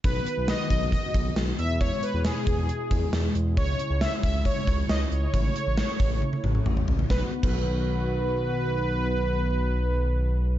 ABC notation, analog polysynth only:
X:1
M:4/4
L:1/16
Q:1/4=136
K:Bmix
V:1 name="Analog polysynth"
B4 d2 d2 d4 z2 e2 | c2 B2 G8- G2 z2 | c4 e2 e2 c4 d2 c2- | c12- c2 z2 |
B z2 B12- B- | B16 |]